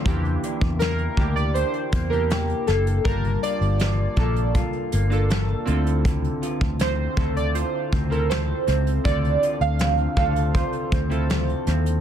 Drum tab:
HH |xxxxxxxxxxxxxxxx|xxxxx-xxxxxxx-xx|xxxxx-xxx-xxx-xx|xxxxxxxxxxxxxxxx|
SD |----o-------o-o-|----o-------o---|----o-------o-o-|----o-------o-o-|
BD |o--o--o---o-----|o-----o-o-------|o--o--o---o-----|o-----o-o-o-----|